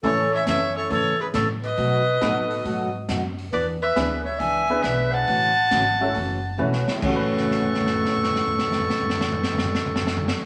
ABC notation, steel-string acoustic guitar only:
X:1
M:4/4
L:1/8
Q:"Swing" 1/4=137
K:A
V:1 name="Steel-string acoustic guitar"
[C,E,A,CA] z [C,E,A,CA] z [C,E,A,CA] z [C,E,A,CA] z | [B,,F,A,^DF] z [B,,F,A,DF] z [B,,F,A,DF] z [B,,F,A,DF] z | [E,B,DG] z [E,B,DG] z [E,B,DG] z [E,B,DG] z | [C,E,A,CF] z [C,E,A,CF] z [C,E,A,CF] z [C,E,A,CF] z |
[A,,C,E,A,CF]8- | [A,,C,E,A,CF]8 |]